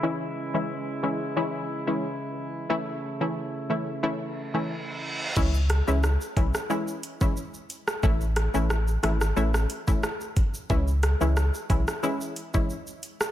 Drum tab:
CC |----------------|----------------|x---------------|----------------|
HH |----------------|----------------|--x---x---x---x-|--x---x---x---x-|
SH |----------------|----------------|xxxxxxxxxxxxxxxx|xxxxxxxxxxxxxxxx|
SD |----------------|----------------|--r-r--r-------r|--r-r-rr-r--r---|
BD |----------------|----------------|o-----o----o----|o----------o--o-|

CC |----------------|
HH |--x---x---x---x-|
SH |xxxxxxxxxxxxxxxx|
SD |--r-r--r-------r|
BD |o-----o----o----|